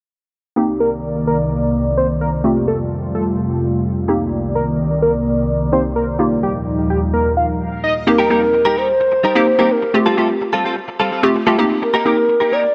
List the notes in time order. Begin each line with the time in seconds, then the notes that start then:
0.56 C2 C3 D#3 A#3 C4 D#4 G4 D5
0.80 A#4
1.27 A#4
1.97 C5
2.21 A#4
2.44 F2 G3 A3 C4 F4 G4
2.68 A4
3.15 A4
4.08 C2 D#3 A#3 C4 D#4 G4 D5
4.55 A#4
5.02 A#4
5.72 A#3 C4 D#4 G4 C5
5.96 A#4
6.19 D#2 A#2 F3 G3 A#3 D#4 F4 G4
6.43 G4
6.90 G4
7.13 A#4
7.37 F5
7.83 D#5
8.07 A#3 C4 D#4 G4 A#4, muted clean electric guitar stroke
8.18 G3 D#4 G4 A#4
8.30 G3 A#3 C4 D#4 G4 A#4
8.42 muted clean electric guitar stroke
8.53 muted clean electric guitar stroke
8.65 G3 D#4 G4 A#4
8.77 G3 D#4 G4 A#4 C5
8.89 muted clean electric guitar stroke
9.00 muted clean electric guitar stroke
9.12 muted clean electric guitar stroke
9.24 G3 D#4 G4 A#4
9.36 G3 A#3 C4 D#4 G4 A#4
9.47 muted clean electric guitar stroke
9.59 G3 A#3 C4 D#4 G4 A#4
9.71 A#4, muted clean electric guitar stroke
9.83 muted clean electric guitar stroke
9.94 A3 C4 F4 G4, muted clean electric guitar stroke
10.06 G3 C4 F4 A4
10.17 G3 A3 C4 F4 G4 A4
10.30 muted clean electric guitar stroke
10.41 muted clean electric guitar stroke
10.53 G3 C4 F4 A4
10.65 G3 C4 F4 A4
10.76 muted clean electric guitar stroke
10.88 muted clean electric guitar stroke
11.00 G3 C4 F4 A4
11.11 G3 C4 F4 A4
11.23 A3 C4 F4 G4, muted clean electric guitar stroke
11.35 muted clean electric guitar stroke
11.46 G3 A3 C4 F4 G4 A4
11.58 A#3 C4 D#4 G4, muted clean electric guitar stroke
11.70 muted clean electric guitar stroke
11.82 A#4, muted clean electric guitar stroke
11.93 A#3 D#4 G4 A#4
12.05 A#3 C4 D#4 G4 A#4
12.17 muted clean electric guitar stroke
12.29 muted clean electric guitar stroke
12.40 A#3 D#4 G4 A#4
12.52 A#3 D#4 G4 A#4 D5
12.64 muted clean electric guitar stroke